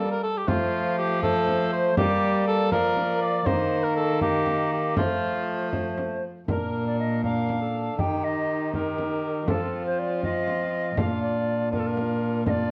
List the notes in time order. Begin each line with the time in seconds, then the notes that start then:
Already playing: G3 A#3 D5
0.00 A4
0.12 A#4
0.23 A4
0.37 G4
0.47 F3 A3 F4 C5, frame drum
0.98 G4
1.22 A3 A4 C5, frame drum
1.48 frame drum
1.72 C5
1.97 G3 A#3 G4 D5, frame drum
2.48 A4
2.71 F3 A#3 A#4 D5, frame drum
2.96 frame drum
3.22 D5
3.46 D#3 A#3 C5 D#5, frame drum
3.84 A#4
3.96 A4
4.21 A#3 G4 D#5, frame drum
4.46 frame drum
4.73 G4
4.97 F3 A3 F4 C5, frame drum
5.73 frame drum
5.98 frame drum
6.48 A#2 D4 A#4, frame drum
6.87 D5
6.99 D#5
7.24 D4 A#4 F5, frame drum
7.49 frame drum
7.62 A4
7.99 D#3 D#4 G4 G5, frame drum
8.24 D#5
8.73 D#4 G4 A#4, frame drum
8.98 frame drum
9.48 F3 C4 F4 A4, frame drum
9.86 C5
9.99 D5
10.23 D#5, frame drum
10.48 frame drum
10.97 A#2 D4 F4 F5, frame drum
11.22 D5
11.71 D4 F4 A#4, frame drum
11.79 A4
11.86 A#4
11.97 frame drum
12.46 D4 F4 D#5, frame drum
12.50 D5